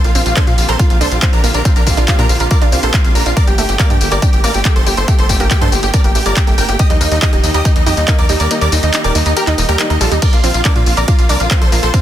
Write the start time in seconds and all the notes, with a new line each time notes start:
Already playing: D3 A#3 C4 G4
0.04 A#1 A#3 F4 F5, closed hi-hat, tambourine
0.15 A#1 C4 F4 F5, open hi-hat, tambourine
0.26 A#1 F4 F5, closed hi-hat, tambourine
0.36 D4 A4 C5 C6, kick, clap, closed hi-hat, tambourine
0.47 A#2 F4 F5, closed hi-hat, tambourine
0.58 A#1 F4 F5, open hi-hat, tambourine
0.68 A#1 A4 A#4 C5 C6, closed hi-hat, tambourine
0.79 F4 F5, kick, closed hi-hat, tambourine
0.90 A#1 F4 F5, closed hi-hat, tambourine
1.01 C2 D4 A4 C5 C6, open hi-hat, tambourine
1.12 A#1 F4 F5, closed hi-hat, tambourine
1.22 C4 F4 F5, kick, clap, closed hi-hat, tambourine
1.33 A#1 D4 A#4 A#5, closed hi-hat, tambourine
1.44 A#1 A#3 F4 F5, open hi-hat, tambourine
1.54 A#1 D4 A#4 A#5, closed hi-hat, tambourine
1.65 C4 F4 F5, kick, closed hi-hat, tambourine
1.76 A#1 D4 A#4 A#5, closed hi-hat, tambourine
1.87 A#1 F4 F5, kick, open hi-hat, tambourine
1.97 A#1 D4 F4 F5, closed hi-hat, tambourine
2.08 F4 F5, kick, clap, closed hi-hat, tambourine
2.19 A#2 D4 F4 A#4 A#5, closed hi-hat, tambourine
2.29 A#1 F4 F5, open hi-hat, tambourine
2.40 A#1 F4 A#4 F5, closed hi-hat, tambourine
2.51 F4 A#4 D5 D6, kick, closed hi-hat, tambourine
2.62 A#1 D4 F4 F5, closed hi-hat, tambourine
2.72 C2 C4 F4 F5, open hi-hat, tambourine
2.83 A#1 A#3 A4 C5 C6, closed hi-hat, tambourine
2.94 F4 F5, kick, clap, closed hi-hat, tambourine
3.04 A#1 C4 F4 F5, closed hi-hat, tambourine
3.15 A#1 D4 A#4 A#5, open hi-hat, tambourine
3.26 A#1 D4 F4 F5, closed hi-hat, tambourine
3.36 A3 G4 A#4 D5 D6, kick, closed hi-hat, tambourine
3.47 G1 G3 G4 G5, closed hi-hat, tambourine
3.58 G1 A3 G4 G5, open hi-hat, tambourine
3.69 G1 G4 G5, closed hi-hat, tambourine
3.79 A#3 A#4 D5 D6, kick, clap, closed hi-hat, tambourine
3.90 G2 D4 G4 G5, closed hi-hat, tambourine
4.01 G1 G4 G5, open hi-hat, tambourine
4.12 G1 G4 A#4 D5 D6, closed hi-hat, tambourine
4.22 D4 G4 G5, kick, closed hi-hat, tambourine
4.33 G1 G4 G5, closed hi-hat, tambourine
4.44 A1 A#3 A#4 D5 D6, open hi-hat, tambourine
4.54 G1 G4 G5, closed hi-hat, tambourine
4.65 A3 G4 G5, kick, clap, closed hi-hat, tambourine
4.76 G1 A4 C5 C6, closed hi-hat, tambourine
4.87 G1 G3 G4 G5, open hi-hat, tambourine
4.97 G1 A4 C5 C6, closed hi-hat, tambourine
5.08 A3 G4 G5, kick, closed hi-hat, tambourine
5.19 G1 A4 C5 C6, closed hi-hat, tambourine
5.29 G1 G4 G5, kick, open hi-hat, tambourine
5.40 G1 A#3 G4 G5, closed hi-hat, tambourine
5.51 G4 G5, kick, clap, closed hi-hat, tambourine
5.61 G2 D4 A4 C5 C6, closed hi-hat, tambourine
5.72 G1 G4 G5, open hi-hat, tambourine
5.83 G1 G4 G5, closed hi-hat, tambourine
5.94 D4 A#4 D5 D6, kick, closed hi-hat, tambourine
6.04 G1 A#3 G4 G5, closed hi-hat, tambourine
6.15 A1 A3 G4 G5, open hi-hat, tambourine
6.26 G1 G3 A#4 D5 D6, closed hi-hat, tambourine
6.36 G4 G5, kick, clap, closed hi-hat, tambourine
6.47 G1 A3 G4 G5, closed hi-hat, tambourine
6.58 G1 A#4 G5 G6, open hi-hat, tambourine
6.69 G1 A#3 G4 G5, closed hi-hat, tambourine
6.79 D#3 G3 A#3 G4 D#5 D#6, kick, closed hi-hat, tambourine
6.90 D#2 G3 D#4 D#5, closed hi-hat, tambourine
7.01 D#2 A#3 D#4 D#5, open hi-hat, tambourine
7.11 D#2 D#4 D#5, closed hi-hat, tambourine
7.22 D#4 G4 D#5 D#6, kick, clap, closed hi-hat, tambourine
7.33 D#1 D#4 G4 D#5, closed hi-hat, tambourine
7.43 D#2 D#4 D#5, open hi-hat, tambourine
7.54 D#2 G4 A#4 D#5 D#6, closed hi-hat, tambourine
7.65 D#4 G4 D#5, kick, closed hi-hat, tambourine
7.76 D#2 D#4 D#5, closed hi-hat, tambourine
7.86 F2 D#4 G4 D#5 D#6, open hi-hat, tambourine
7.97 D#2 D#4 D#5, closed hi-hat, tambourine
8.08 A#3 D#4 D#5, kick, clap, closed hi-hat, tambourine
8.19 D#2 A#4 D5 D6, closed hi-hat, tambourine
8.29 D#2 G3 D#4 D#5, open hi-hat, tambourine
8.40 D#2 A#4 D5 D6, closed hi-hat, tambourine
8.51 A#3 D#4 D#5, closed hi-hat, tambourine
8.61 D#2 A#4 D5 D6, closed hi-hat, tambourine
8.72 D#2 D#4 D#5, open hi-hat, tambourine
8.83 D#2 D#4 D#5, closed hi-hat, tambourine
8.94 D#4 D#5, clap, closed hi-hat, tambourine
9.04 D#1 G4 A#4 D5 D6, closed hi-hat, tambourine
9.15 D#2 D#4 D#5, open hi-hat, tambourine
9.26 D#2 D#4 A#4 D#5, closed hi-hat, tambourine
9.36 G4 A#4 A#5, closed hi-hat, tambourine
9.47 D#2 D#4 D#5, clap, closed hi-hat, tambourine
9.58 D#1 A#3 D#4 D#5, open hi-hat, tambourine
9.69 D#2 G3 G4 A#4 A#5, closed hi-hat, tambourine
9.79 G3 D#4 D#5, clap, closed hi-hat, tambourine
9.90 D#2 D#4 A#4 D#5, closed hi-hat, tambourine
10.01 A#1 G3 F4 A4 A5, open hi-hat, tambourine
10.11 D#2 G3 D#4 D#5, closed hi-hat, tambourine
10.22 D3 C4 F4 A#4 D5 D6, kick, closed hi-hat, ride, tambourine, crash
10.33 A#1 A#3 F4 F5, closed hi-hat, tambourine
10.43 A#1 C4 F4 F5, open hi-hat, tambourine
10.54 A#1 F4 F5, closed hi-hat, tambourine
10.65 D4 A#4 D5 D6, kick, clap, closed hi-hat, ride, tambourine
10.76 A#2 F4 F5, closed hi-hat, tambourine
10.86 A#1 F4 F5, open hi-hat, tambourine
10.97 A#1 A#4 D5 D6, closed hi-hat, tambourine
11.08 F4 F5, kick, closed hi-hat, ride, tambourine
11.18 A#1 F4 F5, closed hi-hat, tambourine
11.29 C2 D4 A#4 D5 D6, open hi-hat, tambourine
11.40 A#1 F4 F5, closed hi-hat, tambourine
11.51 C4 F4 F5, kick, clap, closed hi-hat, ride, tambourine
11.61 A#1 A4 C5 C6, closed hi-hat, tambourine
11.72 A#1 A#3 F4 F5, open hi-hat, tambourine
11.83 A#1 A4 C5 C6, closed hi-hat, tambourine
11.94 C4 F4 F5, kick, closed hi-hat, ride, tambourine